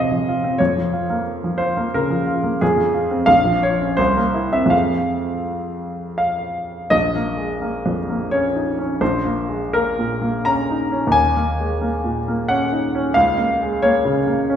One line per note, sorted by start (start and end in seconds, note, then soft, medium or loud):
0.00 0.53 F2 soft
0.00 0.21 C3 soft
0.00 0.11 F3 soft
0.00 0.44 C4 soft
0.00 0.28 F4 soft
0.00 0.62 G#4 medium
0.00 0.60 D#5 medium
0.00 0.61 F5 medium
0.11 0.37 F3 soft
0.28 0.54 F4 soft
0.44 0.60 C4 soft
0.58 2.58 F2 soft
0.58 1.59 C#5 medium
0.77 1.03 F3 soft
0.93 1.20 F4 soft
1.10 1.64 A#3 soft
1.44 1.71 F3 soft
1.58 1.86 F4 soft
1.58 1.93 C5 medium
1.77 2.04 A#3 soft
1.94 2.21 C#3 soft
1.94 2.61 A#4 medium
2.10 2.38 F3 soft
2.27 2.54 F4 soft
2.44 2.61 A#3 soft
2.61 3.27 F2 soft
2.61 3.29 G#4 medium
2.77 3.04 F3 soft
2.94 3.22 F4 soft
3.11 3.28 C4 soft
3.26 3.96 A#1 soft
3.26 3.62 F5 medium
3.45 3.74 F3 soft
3.63 3.92 F4 soft
3.63 3.99 C#5 medium
3.81 3.99 C#4 soft
3.97 4.70 C2 soft
3.97 4.52 C5 medium
4.17 4.46 A#3 soft
4.34 4.64 E4 soft
4.53 4.67 C4 soft
4.53 4.72 E5 medium
4.66 6.85 F2 soft
4.66 6.86 G#3 soft
4.66 6.86 C4 soft
4.66 6.87 F4 soft
4.70 6.16 F5 medium
6.18 6.92 F5 medium
6.90 8.96 A#1 soft
6.90 8.31 D#5 medium
7.16 7.53 A#3 soft
7.37 7.62 G#3 soft
7.62 7.99 A#3 soft
7.86 8.23 F2 soft
8.10 8.46 A#3 soft
8.31 8.69 C#4 soft
8.31 9.00 C#5 medium
8.55 8.78 D#4 soft
8.78 9.01 C#4 soft
9.01 11.08 A#1 soft
9.01 9.70 C5 medium
9.25 9.61 A#3 soft
9.49 9.71 G#3 soft
9.73 10.11 A#3 soft
9.73 10.44 A#4 medium
9.99 10.35 A#2 soft
10.22 10.58 A#3 soft
10.45 10.81 C#4 soft
10.45 11.13 A#5 medium
10.70 10.91 D#4 soft
10.92 11.14 C#4 soft
11.07 13.08 D#2 soft
11.12 12.48 G#5 medium
11.37 11.73 A#3 soft
11.60 11.82 G#3 soft
11.81 12.17 A#3 soft
12.04 12.39 A#2 soft
12.28 12.63 A#3 soft
12.48 12.85 C#4 soft
12.48 13.15 F#5 medium
12.72 12.94 D#4 soft
12.95 13.16 C#4 soft
13.14 14.56 C#2 soft
13.14 13.81 F5 medium
13.38 13.73 A#3 soft
13.62 13.83 G#3 soft
13.82 14.17 A#3 soft
13.82 14.48 C#5 medium
14.05 14.39 C#3 soft
14.27 14.56 A#3 soft
14.50 14.56 C#4 soft